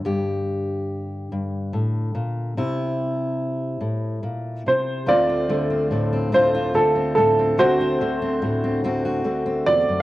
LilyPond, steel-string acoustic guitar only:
\new Staff \with { instrumentName = "Steel-string acoustic guitar" } { \time 6/8 \key c \mixolydian \tempo 4. = 48 << { <d g'>2. | e'2. | <a c' f'>16 f'16 a16 c'16 a16 c'16 <a c' f'>16 f'16 a16 c'16 a16 c'16 | <a c' fis'>16 fis'16 a16 c'16 a16 c'16 <a c' fis'>16 fis'16 a16 c'8. | } \\ { g,4. g,8 a,8 bes,8 | c4. a,8 bes,8 c8 | d,8 d8 a,8 d,8 d8 a,8 | d,8 d8 a,8 d,8 d8 e,16 fis,16 | } >> }